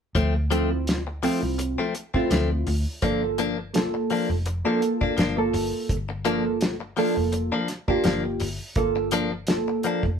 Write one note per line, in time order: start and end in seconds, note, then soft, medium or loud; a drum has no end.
0.15 1.26 D2 medium
0.15 0.35 F3 medium
0.15 0.35 A3 medium
0.15 0.34 C4 medium
0.15 kick medium
0.15 closed hi-hat medium
0.35 muted clean electric guitar stroke soft
0.51 0.71 F3 medium
0.51 0.71 A3 medium
0.51 1.00 C4 medium
0.51 0.70 C4 medium
0.51 1.00 E4 medium
0.51 1.00 F4 medium
0.51 closed hi-hat medium
0.71 muted clean electric guitar stroke soft
0.87 snare medium
0.87 closed hi-hat medium
1.07 muted clean electric guitar stroke soft
1.23 1.43 F3 medium
1.23 1.42 A3 medium
1.23 1.84 C4 medium
1.23 1.41 C4 medium
1.23 1.84 E4 medium
1.23 1.84 F4 medium
1.23 open hi-hat medium
1.42 1.74 C2 medium
1.42 muted clean electric guitar stroke soft
1.59 muted clean electric guitar stroke soft
1.59 closed hi-hat medium
1.78 1.94 F3 soft
1.78 1.94 A3 medium
1.78 1.94 C4 medium
1.95 muted clean electric guitar stroke soft
1.95 closed hi-hat medium
2.14 2.31 A3 soft
2.14 2.31 C4 soft
2.14 2.73 C4 medium
2.14 2.73 E4 medium
2.14 2.73 F4 loud
2.14 kick medium
2.31 2.62 D2 medium
2.31 2.50 F3 medium
2.31 2.50 A3 medium
2.31 2.49 C4 medium
2.31 snare medium
2.31 closed hi-hat medium
2.50 muted clean electric guitar stroke soft
2.67 2.84 D2 medium
2.67 muted clean electric guitar stroke soft
2.67 open hi-hat medium
3.02 4.13 G1 medium
3.02 3.22 F3 medium
3.02 3.51 A#3 medium
3.02 3.23 A#3 medium
3.02 3.22 D4 medium
3.02 3.51 F4 medium
3.02 3.51 A4 medium
3.02 kick medium
3.02 closed hi-hat medium
3.23 muted clean electric guitar stroke soft
3.38 3.58 F3 medium
3.38 3.58 A#3 medium
3.38 3.57 D4 medium
3.38 closed hi-hat soft
3.58 muted clean electric guitar stroke soft
3.74 4.34 A#3 medium
3.74 4.35 F4 medium
3.74 4.35 A4 medium
3.74 snare loud
3.74 closed hi-hat medium
3.94 muted clean electric guitar stroke soft
4.10 4.30 F3 medium
4.10 4.30 A#3 medium
4.10 4.29 D4 medium
4.10 open hi-hat medium
4.29 4.61 F1 medium
4.29 muted clean electric guitar stroke medium
4.46 muted clean electric guitar stroke soft
4.46 closed hi-hat medium
4.65 4.81 F3 soft
4.65 5.12 A#3 medium
4.65 4.81 A#3 medium
4.65 4.82 D4 medium
4.65 5.12 F4 medium
4.65 5.12 A4 medium
4.82 muted clean electric guitar stroke soft
4.82 closed hi-hat soft
5.01 5.17 A#3 soft
5.01 5.18 D4 medium
5.01 kick medium
5.17 5.49 G1 medium
5.17 5.37 F3 medium
5.17 5.37 A#3 medium
5.17 5.36 D4 medium
5.17 snare medium
5.17 closed hi-hat medium
5.37 5.95 A#3 medium
5.37 5.96 F4 medium
5.37 5.96 A4 medium
5.37 muted clean electric guitar stroke soft
5.54 5.71 G1 medium
5.54 muted clean electric guitar stroke soft
5.54 open hi-hat medium
5.89 7.00 G1 loud
5.89 kick medium
5.89 closed hi-hat medium
6.09 muted clean electric guitar stroke soft
6.25 6.45 F3 medium
6.25 6.74 A#3 medium
6.25 6.45 A#3 medium
6.25 6.44 D4 medium
6.25 6.74 F4 medium
6.25 6.75 A4 medium
6.25 closed hi-hat soft
6.45 muted clean electric guitar stroke soft
6.61 snare loud
6.61 closed hi-hat medium
6.80 muted clean electric guitar stroke soft
6.97 7.17 F3 medium
6.97 7.58 A#3 medium
6.97 7.16 A#3 medium
6.97 7.15 D4 medium
6.97 7.58 F4 medium
6.97 7.58 A4 medium
6.97 open hi-hat medium
7.16 7.48 F1 medium
7.16 muted clean electric guitar stroke soft
7.32 muted clean electric guitar stroke soft
7.32 closed hi-hat medium
7.52 7.68 F3 soft
7.52 7.68 A#3 medium
7.52 7.69 D4 medium
7.68 muted clean electric guitar stroke soft
7.68 snare soft
7.68 closed hi-hat medium
7.88 8.46 A#3 medium
7.88 8.04 A#3 soft
7.88 8.05 D4 soft
7.88 8.47 F4 medium
7.88 8.47 G4 medium
7.88 kick medium
8.04 8.36 G1 medium
8.04 8.24 F3 medium
8.04 8.24 A#3 medium
8.04 8.23 D4 medium
8.04 snare loud
8.04 closed hi-hat medium
8.24 muted clean electric guitar stroke soft
8.40 8.58 G1 medium
8.40 muted clean electric guitar stroke soft
8.40 open hi-hat medium
8.75 9.87 G1 loud
8.75 9.25 A#3 medium
8.75 9.25 F4 medium
8.75 9.26 A4 medium
8.75 kick medium
8.75 closed hi-hat medium
8.96 muted clean electric guitar stroke soft
9.11 9.32 F3 medium
9.11 9.32 A#3 medium
9.11 9.31 D4 loud
9.11 closed hi-hat medium
9.32 muted clean electric guitar stroke soft
9.47 10.08 A#3 medium
9.47 10.09 F4 medium
9.47 10.09 A4 medium
9.47 snare loud
9.47 closed hi-hat medium
9.68 muted clean electric guitar stroke soft
9.83 10.04 F3 medium
9.83 10.04 A#3 medium
9.83 10.03 D4 medium
9.83 closed hi-hat medium
10.03 10.20 F1 medium
10.03 muted clean electric guitar stroke soft
10.03 kick medium